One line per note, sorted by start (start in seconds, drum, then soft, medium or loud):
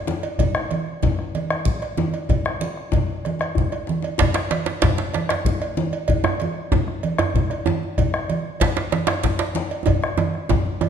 0.07 djembe slap medium
0.07 djembe tone medium
0.07 high conga medium
0.23 cowbell medium
0.23 high conga soft
0.39 bombo low loud
0.39 cowbell medium
0.39 djembe bass medium
0.39 low conga medium
0.55 bombo rim medium
0.55 djembe slap soft
0.55 djembe tone medium
0.55 high conga soft
0.71 cowbell medium
0.71 high conga medium
1.02 bombo low loud
1.02 cowbell soft
1.02 djembe slap medium
1.02 djembe tone medium
1.02 low conga medium
1.02 djembe bass medium
1.19 bombo rim soft
1.35 cowbell soft
1.35 high conga medium
1.50 bombo rim medium
1.50 cowbell soft
1.50 djembe tone medium
1.65 bombo low loud
1.65 low conga medium
1.82 bombo rim soft
1.82 cowbell soft
1.97 djembe slap medium
1.97 high conga medium
1.97 djembe tone medium
2.14 cowbell soft
2.14 high conga soft
2.29 bombo low loud
2.29 cowbell medium
2.29 high conga soft
2.29 djembe bass medium
2.29 low conga medium
2.45 bombo rim medium
2.45 djembe tone medium
2.61 cowbell soft
2.61 high conga medium
2.77 bombo rim soft
2.77 djembe slap soft
2.77 high conga soft
2.92 bombo low medium
2.92 cowbell soft
2.92 djembe slap medium
2.92 djembe tone medium
2.92 djembe bass medium
2.92 low conga medium
3.25 bombo rim soft
3.25 cowbell soft
3.25 high conga medium
3.39 bombo rim medium
3.39 cowbell soft
3.39 djembe tone medium
3.55 bombo low medium
3.55 djembe bass medium
3.55 low conga medium
3.72 bombo rim soft
3.72 cowbell medium
3.72 djembe bass soft
3.87 djembe slap medium
3.87 high conga medium
4.02 cowbell medium
4.02 djembe slap medium
4.18 bombo low loud
4.18 cowbell medium
4.18 djembe slap loud
4.18 djembe bass medium
4.18 low conga medium
4.34 bombo rim medium
4.34 djembe slap soft
4.34 djembe slap medium
4.34 djembe tone medium
4.34 high conga soft
4.51 cowbell medium
4.51 djembe slap medium
4.51 high conga medium
4.66 djembe slap medium
4.82 bombo low loud
4.82 cowbell medium
4.82 djembe slap loud
4.82 djembe slap medium
4.82 djembe tone medium
4.82 djembe bass medium
4.82 low conga medium
4.98 bombo rim soft
4.98 djembe slap medium
5.14 cowbell medium
5.14 djembe slap medium
5.14 high conga medium
5.29 bombo rim medium
5.29 cowbell medium
5.29 djembe slap medium
5.29 djembe tone medium
5.45 bombo low loud
5.45 low conga medium
5.45 djembe bass medium
5.62 bombo rim soft
5.62 cowbell medium
5.77 djembe slap medium
5.77 high conga medium
5.77 djembe tone medium
5.93 cowbell medium
5.93 high conga soft
6.08 bombo low loud
6.08 cowbell medium
6.08 djembe bass medium
6.08 low conga medium
6.24 bombo rim medium
6.24 djembe slap soft
6.24 djembe tone loud
6.25 djembe tone soft
6.25 high conga soft
6.40 cowbell medium
6.40 high conga medium
6.72 bombo low loud
6.72 djembe slap medium
6.72 djembe tone loud
6.72 djembe tone medium
6.72 djembe bass medium
6.72 low conga medium
6.88 bombo rim soft
7.03 cowbell medium
7.03 high conga medium
7.18 bombo rim medium
7.18 cowbell medium
7.18 djembe tone medium
7.18 djembe tone loud
7.34 bombo low medium
7.34 low conga medium
7.34 djembe bass medium
7.50 bombo rim soft
7.50 cowbell medium
7.66 djembe slap medium
7.66 djembe tone loud
7.66 high conga medium
7.67 djembe tone medium
7.83 high conga soft
7.98 bombo low loud
7.98 cowbell medium
7.98 djembe bass medium
7.98 low conga medium
8.14 bombo rim medium
8.14 djembe slap soft
8.14 high conga soft
8.29 cowbell medium
8.29 high conga medium
8.60 bombo low medium
8.60 cowbell soft
8.60 djembe slap loud
8.60 djembe slap medium
8.60 low conga medium
8.60 djembe bass medium
8.77 bombo rim soft
8.77 djembe slap medium
8.92 cowbell medium
8.92 djembe slap medium
8.92 high conga medium
9.07 bombo rim medium
9.07 cowbell medium
9.07 djembe slap loud
9.07 djembe tone medium
9.23 bombo low medium
9.23 djembe slap medium
9.23 low conga medium
9.23 djembe bass medium
9.39 bombo rim soft
9.39 cowbell soft
9.39 djembe slap medium
9.55 djembe slap medium
9.55 high conga medium
9.55 djembe tone medium
9.70 cowbell medium
9.70 high conga soft
9.86 bombo rim soft
9.86 bombo low medium
9.86 cowbell medium
9.86 djembe tone loud
9.86 high conga soft
9.86 low conga medium
9.86 djembe bass medium
10.02 bombo rim medium
10.02 djembe slap soft
10.02 high conga soft
10.02 djembe tone medium
10.18 bombo rim soft
10.18 cowbell medium
10.18 djembe slap soft
10.18 djembe tone loud
10.18 high conga medium
10.34 bombo rim soft
10.34 high conga soft
10.49 bombo low loud
10.49 cowbell medium
10.49 djembe slap medium
10.49 djembe tone loud
10.49 djembe tone medium
10.49 low conga medium
10.49 djembe bass medium
10.66 djembe slap soft
10.66 high conga soft
10.81 cowbell medium
10.81 djembe tone loud
10.81 high conga medium